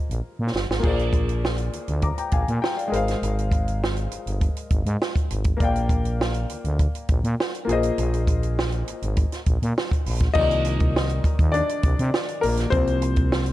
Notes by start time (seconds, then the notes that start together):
Already playing: A#3 F4 G#4 C5 D#5
0.10 A#1, closed hi-hat
0.39 A#2
0.54 G1, snare
0.69 G#1, snare
0.79 A#3 F4 G#4, crash
0.84 A#1 C5 D5, kick
0.99 closed hi-hat
1.13 kick, closed hi-hat
1.29 closed hi-hat
1.45 snare
1.58 closed hi-hat
1.72 D2, closed hi-hat
1.88 D2, closed hi-hat
2.02 A#5 D6, kick, closed hi-hat
2.18 G5 A#5, closed hi-hat
2.31 A#1 F5 G#5, kick, closed hi-hat
2.48 A#2, closed hi-hat
2.62 G5, snare
2.77 D5 F5, closed hi-hat
2.88 G#3 G#4
2.92 G#1 A#4 C5, closed hi-hat
2.96 F5
3.08 snare, closed hi-hat
3.22 G#1, closed hi-hat
3.39 closed hi-hat
3.52 kick, closed hi-hat
3.68 closed hi-hat
3.84 snare
3.96 closed hi-hat
4.11 closed hi-hat
4.26 G1, closed hi-hat
4.41 kick, closed hi-hat
4.56 closed hi-hat
4.70 G#1, kick, closed hi-hat
4.85 G#2, closed hi-hat
5.02 snare
5.16 kick, closed hi-hat
5.30 G#1, closed hi-hat
5.44 kick, closed hi-hat
5.57 A#1 A#3 A#4 D5, kick, closed hi-hat
5.62 F5 G5
5.76 closed hi-hat
5.89 kick, closed hi-hat
6.05 closed hi-hat
6.21 snare
6.34 closed hi-hat
6.49 D2, closed hi-hat
6.64 D2, closed hi-hat
6.79 kick, closed hi-hat
6.95 closed hi-hat
7.08 A#1, kick, closed hi-hat
7.24 A#2, closed hi-hat
7.40 snare
7.55 closed hi-hat
7.65 A#1 A#3 F4
7.69 G#4 C5 D#5, closed hi-hat
7.83 closed hi-hat
7.98 A#1, closed hi-hat
8.14 closed hi-hat
8.27 kick, closed hi-hat
8.43 closed hi-hat
8.59 snare
8.72 closed hi-hat
8.88 G#1, closed hi-hat
9.02 G#1, closed hi-hat
9.17 kick, closed hi-hat
9.32 snare, closed hi-hat
9.46 A#1, kick, closed hi-hat
9.62 A#2, closed hi-hat
9.78 snare
9.91 kick, closed hi-hat
10.06 A#1, open hi-hat
10.20 kick, snare, closed hi-hat
10.34 C2 D#3 F3 A#3 D#4 D5 D#5, kick, crash
10.51 closed hi-hat
10.65 closed hi-hat
10.80 kick, closed hi-hat
10.96 snare
11.09 closed hi-hat
11.24 kick, closed hi-hat
11.39 D#2, kick, closed hi-hat
11.52 D4 D5, closed hi-hat
11.69 closed hi-hat
11.83 C2, kick, closed hi-hat
11.99 C3, closed hi-hat
12.14 snare
12.28 closed hi-hat
12.41 A#1 A#3 A#4, open hi-hat
12.57 snare, closed hi-hat
12.70 C2 F3 A#3 C4 C5, kick, closed hi-hat
12.87 closed hi-hat
13.02 closed hi-hat
13.16 kick, closed hi-hat
13.32 snare
13.46 closed hi-hat